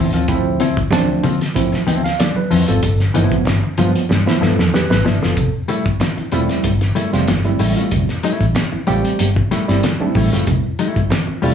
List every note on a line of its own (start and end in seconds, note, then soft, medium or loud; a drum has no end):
0.00 0.11 F3 medium
0.00 0.11 C4 medium
0.00 0.11 E4 medium
0.13 0.29 D#2 medium
0.13 0.26 F3 medium
0.13 0.26 C4 medium
0.13 0.26 F4 medium
0.13 closed hi-hat soft
0.28 0.53 D2 loud
0.28 0.60 F3 loud
0.28 0.60 A3 medium
0.28 0.60 C4 loud
0.28 0.60 E4 loud
0.28 kick loud
0.28 closed hi-hat medium
0.28 muted conga medium
0.60 0.74 D2 medium
0.60 0.78 F3 medium
0.60 0.78 C4 loud
0.60 0.78 E4 loud
0.60 closed hi-hat medium
0.60 muted conga soft
0.77 kick medium
0.77 closed hi-hat soft
0.91 1.05 D2 loud
0.91 1.23 F3 medium
0.91 1.23 A3 medium
0.91 1.23 C4 medium
0.91 1.23 D4 loud
0.91 muted clean electric guitar stroke soft
0.91 snare loud
0.91 closed hi-hat medium
0.91 high conga medium
1.08 muted clean electric guitar stroke soft
1.23 1.37 D3 loud
1.23 1.41 F3 medium
1.23 1.41 C4 medium
1.23 1.41 F4 medium
1.23 closed hi-hat medium
1.23 muted conga medium
1.23 low conga medium
1.41 muted clean electric guitar stroke soft
1.41 snare soft
1.41 closed hi-hat soft
1.54 1.79 F3 medium
1.54 1.79 A3 medium
1.54 1.79 C4 medium
1.54 1.79 E4 medium
1.54 muted clean electric guitar stroke soft
1.54 kick loud
1.54 closed hi-hat loud
1.54 muted conga medium
1.72 muted clean electric guitar stroke medium
1.72 muted fingered electric bass stroke soft
1.72 snare soft
1.72 closed hi-hat soft
1.87 2.01 D2 medium
1.87 2.08 F3 medium
1.87 2.04 C4 medium
1.87 2.03 E4 loud
1.87 2.04 G5 medium
1.87 closed hi-hat medium
2.04 2.19 F5 medium
2.04 muted clean electric guitar stroke soft
2.04 snare soft
2.04 closed hi-hat medium
2.19 2.35 D5 medium
2.19 muted clean electric guitar stroke soft
2.19 snare loud
2.19 closed hi-hat medium
2.19 high conga medium
2.36 2.66 B4 medium
2.36 muted clean electric guitar stroke soft
2.36 high conga medium
2.51 2.65 F2 loud
2.51 2.64 F3 medium
2.51 2.65 C4 medium
2.51 2.65 E4 medium
2.51 open hi-hat medium
2.68 2.80 G#1 medium
2.68 2.81 F3 medium
2.68 2.80 C4 medium
2.68 2.80 F4 medium
2.68 2.98 A4 medium
2.68 closed hi-hat soft
2.83 3.08 G1 loud
2.83 kick loud
2.83 closed hi-hat medium
2.83 muted conga medium
3.00 snare soft
3.00 closed hi-hat soft
3.14 3.28 G1 medium
3.14 3.35 F3 medium
3.14 3.46 F3 medium
3.14 3.46 A3 medium
3.14 3.46 B3 medium
3.14 3.36 B3 medium
3.14 3.46 E4 medium
3.14 3.36 E4 medium
3.14 closed hi-hat medium
3.14 muted conga soft
3.32 kick loud
3.32 closed hi-hat soft
3.45 3.60 G1 medium
3.45 muted clean electric guitar stroke soft
3.45 snare loud
3.45 closed hi-hat medium
3.45 high conga medium
3.63 muted clean electric guitar stroke soft
3.78 3.92 G2 loud
3.78 3.95 F3 medium
3.78 4.02 F3 medium
3.78 4.02 A3 medium
3.78 4.02 B3 medium
3.78 3.94 B3 medium
3.78 4.02 F4 medium
3.78 3.94 F4 medium
3.78 closed hi-hat medium
3.78 muted conga medium
3.95 muted clean electric guitar stroke soft
3.95 closed hi-hat soft
4.09 4.24 G2 medium
4.09 muted clean electric guitar stroke soft
4.09 snare medium
4.09 muted conga medium
4.26 4.58 F3 medium
4.26 4.58 A3 medium
4.26 4.58 B3 medium
4.26 4.58 E4 medium
4.26 muted clean electric guitar stroke soft
4.26 snare medium
4.41 4.55 G2 medium
4.41 4.59 F3 medium
4.41 4.58 B3 medium
4.41 4.57 E4 medium
4.41 4.72 A4 medium
4.41 snare medium
4.59 4.70 F2 medium
4.59 muted clean electric guitar stroke soft
4.59 snare medium
4.73 4.90 G4 medium
4.73 4.89 B4 medium
4.73 muted clean electric guitar stroke soft
4.73 snare loud
4.73 high conga medium
4.90 5.02 G#1 loud
4.90 5.05 B4 medium
4.90 muted clean electric guitar stroke soft
4.90 snare medium
4.90 high conga medium
5.05 5.19 G1 loud
5.05 5.19 F3 medium
5.05 5.19 B3 medium
5.05 5.19 E4 medium
5.05 5.21 D5 medium
5.05 snare loud
5.22 5.34 F#1 medium
5.22 5.35 F3 medium
5.22 5.35 B3 medium
5.22 5.34 F4 medium
5.22 5.53 A4 medium
5.22 snare medium
5.37 5.50 F1 loud
5.37 kick loud
5.37 closed hi-hat medium
5.37 muted conga medium
5.68 5.86 G3 medium
5.68 5.86 A3 medium
5.68 5.87 E4 medium
5.68 closed hi-hat medium
5.68 muted conga soft
5.86 5.97 G1 medium
5.86 kick medium
5.86 closed hi-hat soft
6.00 muted clean electric guitar stroke soft
6.00 snare loud
6.00 closed hi-hat medium
6.00 high conga medium
6.17 6.25 C4 medium
6.17 6.25 E4 medium
6.17 muted clean electric guitar stroke soft
6.17 muted fingered electric bass stroke medium
6.17 closed hi-hat soft
6.32 6.46 E1 medium
6.32 6.50 G3 medium
6.32 6.72 G3 medium
6.32 6.72 A3 medium
6.32 6.49 A3 medium
6.32 6.72 C4 medium
6.32 6.72 E4 loud
6.32 6.49 F4 medium
6.32 closed hi-hat medium
6.32 muted conga medium
6.49 muted clean electric guitar stroke soft
6.49 snare soft
6.49 closed hi-hat soft
6.63 6.89 G1 loud
6.63 muted clean electric guitar stroke soft
6.63 kick medium
6.63 closed hi-hat medium
6.63 muted conga medium
6.81 muted clean electric guitar stroke soft
6.81 snare soft
6.81 closed hi-hat soft
6.95 7.13 G3 medium
6.95 7.13 A3 medium
6.95 7.12 E4 medium
6.95 closed hi-hat medium
7.13 7.28 F1 medium
7.13 7.28 G3 medium
7.13 7.28 A3 medium
7.13 7.28 C4 medium
7.13 7.28 F4 loud
7.13 muted clean electric guitar stroke soft
7.13 snare soft
7.13 closed hi-hat soft
7.27 7.53 G1 loud
7.27 muted clean electric guitar stroke soft
7.27 snare loud
7.27 closed hi-hat medium
7.27 high conga medium
7.45 8.07 G3 medium
7.45 8.07 A3 medium
7.45 8.07 C4 medium
7.45 8.07 E4 medium
7.45 muted clean electric guitar stroke soft
7.45 closed hi-hat soft
7.45 high conga medium
7.59 7.73 A1 medium
7.59 7.74 G3 medium
7.59 7.74 A3 medium
7.59 7.74 E4 medium
7.59 open hi-hat medium
7.76 7.89 G3 medium
7.76 7.89 A3 medium
7.76 7.89 F4 medium
7.76 closed hi-hat soft
7.91 8.05 F1 loud
7.91 kick loud
7.91 closed hi-hat medium
7.91 muted conga medium
8.09 snare soft
8.09 closed hi-hat soft
8.23 8.45 G3 medium
8.23 8.45 A3 medium
8.23 8.45 E4 medium
8.23 closed hi-hat medium
8.23 muted conga soft
8.41 8.52 A1 medium
8.41 kick medium
8.41 closed hi-hat soft
8.55 muted clean electric guitar stroke soft
8.55 snare loud
8.55 closed hi-hat medium
8.55 high conga medium
8.72 8.80 C4 medium
8.72 8.80 E4 medium
8.72 muted clean electric guitar stroke soft
8.72 muted fingered electric bass stroke soft
8.87 9.01 A1 loud
8.87 9.05 G3 medium
8.87 9.27 G3 medium
8.87 9.04 A3 medium
8.87 9.27 A3 medium
8.87 9.27 C4 medium
8.87 9.04 F4 medium
8.87 9.27 G4 loud
8.87 closed hi-hat medium
8.87 muted conga medium
8.87 low conga medium
9.04 muted clean electric guitar stroke soft
9.04 closed hi-hat soft
9.19 9.44 G1 loud
9.19 muted clean electric guitar stroke soft
9.19 closed hi-hat medium
9.19 muted conga medium
9.36 muted clean electric guitar stroke medium
9.36 kick loud
9.51 9.69 G3 medium
9.51 9.68 A3 medium
9.51 9.67 E4 medium
9.51 snare soft
9.51 closed hi-hat medium
9.68 9.80 G1 medium
9.68 9.83 G3 loud
9.68 9.83 A3 medium
9.68 9.83 C4 medium
9.68 9.83 E4 loud
9.68 muted clean electric guitar stroke soft
9.68 snare soft
9.68 closed hi-hat medium
9.83 muted clean electric guitar stroke soft
9.83 snare loud
9.83 closed hi-hat medium
9.83 high conga medium
10.00 10.62 G3 medium
10.00 10.62 A3 medium
10.00 10.62 C4 medium
10.00 10.07 D4 medium
10.00 muted clean electric guitar stroke soft
10.00 high conga medium
10.07 10.65 E4 medium
10.15 10.28 A1 medium
10.15 10.29 G3 medium
10.15 10.30 A3 medium
10.15 10.30 E4 medium
10.15 kick medium
10.15 open hi-hat medium
10.32 10.45 G3 medium
10.32 10.45 A3 medium
10.32 10.45 F4 medium
10.32 snare soft
10.32 closed hi-hat soft
10.47 10.61 F1 loud
10.47 kick loud
10.47 closed hi-hat medium
10.47 muted conga medium
10.79 11.00 G3 medium
10.79 11.00 A3 medium
10.79 11.00 E4 loud
10.79 closed hi-hat medium
10.79 muted conga soft
10.96 11.08 G1 medium
10.96 kick loud
10.96 closed hi-hat soft
11.10 muted clean electric guitar stroke soft
11.10 snare loud
11.10 closed hi-hat loud
11.10 high conga medium
11.27 11.35 C4 medium
11.27 11.35 F4 medium
11.27 muted clean electric guitar stroke soft
11.27 muted fingered electric bass stroke medium
11.42 11.54 E1 medium
11.42 11.54 G3 medium
11.42 11.54 A3 medium
11.42 11.54 C4 medium
11.42 11.54 E4 medium
11.42 11.54 F4 medium
11.42 open hi-hat medium
11.42 muted conga medium